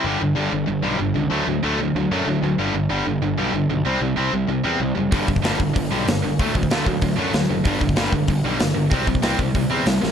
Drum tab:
HH |----------------|----------------|----------------|----------------|
SD |----------------|----------------|----------------|----------------|
BD |----------------|----------------|----------------|----------------|

HH |o---o---o---o---|o---o---o---o---|o---o---o---o---|o---o---o---o---|
SD |----o-------o---|----o-------o---|----o-------o---|----o-------o-o-|
BD |o-oo--o-o-------|o-oo--o-o-------|o-oo--o-o-------|o-oo--o-o-------|